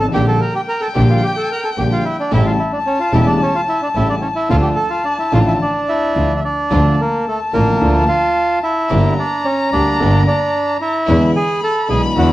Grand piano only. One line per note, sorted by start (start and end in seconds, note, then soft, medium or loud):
0.01 0.07 G#1 medium
0.07 0.14 A1 medium
0.14 0.37 A#1 medium
0.14 0.37 A#2 medium
0.14 0.37 D3 medium
0.14 0.37 G3 medium
0.14 0.37 A#3 medium
0.14 0.37 G4 medium
0.95 1.18 A#1 medium
0.95 1.18 A#2 medium
0.95 1.18 D3 medium
0.95 1.18 G3 medium
0.95 1.18 A#3 medium
0.95 1.18 G4 medium
1.77 2.00 A#1 medium
1.77 2.00 A#2 soft
1.77 2.00 D3 soft
1.77 2.00 G3 soft
1.77 2.00 A#3 soft
1.77 2.00 G4 soft
2.31 2.54 A1 medium
2.31 2.54 A2 medium
2.31 2.54 C#3 medium
2.31 2.54 G3 medium
2.31 2.54 A3 medium
2.31 2.54 E4 medium
3.12 3.36 E1 medium
3.12 3.36 E2 medium
3.12 3.35 C#3 medium
3.12 3.36 G3 medium
3.12 3.36 A3 medium
3.12 3.36 E4 medium
3.94 4.18 A1 soft
3.94 4.18 A2 medium
3.94 4.18 C#3 soft
3.94 4.18 G3 soft
3.94 4.18 A3 soft
3.94 4.18 E4 soft
4.49 4.72 D2 medium
4.49 4.73 D3 medium
4.49 4.72 F3 medium
4.49 4.72 A3 medium
4.49 4.73 F4 medium
5.32 5.55 A1 medium
5.32 5.55 A2 medium
5.32 5.55 D3 medium
5.32 5.55 F3 medium
5.32 5.55 A3 medium
5.32 5.55 F4 medium
6.15 6.39 D2 medium
6.15 6.39 D3 soft
6.15 6.39 F3 soft
6.15 6.39 A3 soft
6.15 6.39 F4 soft
6.71 6.94 D2 medium
6.71 6.94 D3 medium
6.71 6.94 F3 medium
6.71 6.94 A3 medium
6.71 6.94 F4 medium
7.53 7.76 A1 medium
7.53 7.76 A2 medium
7.53 7.76 D3 soft
7.53 7.76 F3 soft
7.53 7.76 A3 soft
7.53 7.76 F4 soft
7.81 8.04 D2 medium
7.81 8.04 D3 medium
7.81 8.04 F3 medium
7.81 8.04 A3 medium
7.81 8.04 F4 medium
8.91 9.14 G1 medium
8.91 9.14 G2 medium
8.91 9.14 D3 medium
8.91 9.14 G3 medium
8.91 9.14 A#3 medium
8.91 9.14 G4 medium
9.73 9.96 D2 soft
9.73 9.96 D3 medium
9.73 9.96 G3 soft
9.73 9.96 A#3 soft
9.73 9.96 G4 soft
10.00 10.23 G1 medium
10.00 10.23 G2 medium
10.00 10.22 D3 medium
10.00 10.22 G3 medium
10.00 10.23 A#3 medium
10.00 10.23 G4 medium
11.08 11.31 E2 medium
11.08 11.30 D3 medium
11.08 11.31 E3 medium
11.08 11.31 G#3 medium
11.08 11.31 B3 medium
11.08 11.31 E4 medium
11.89 12.11 B1 medium
11.89 12.11 B2 medium
11.89 12.11 D3 soft
11.89 12.11 G#3 soft
11.89 12.12 B3 soft
11.89 12.12 E4 medium
12.16 12.33 E2 medium
12.16 12.33 D3 medium
12.16 12.33 E3 medium
12.16 12.33 G#3 medium
12.16 12.33 B3 medium
12.16 12.33 E4 medium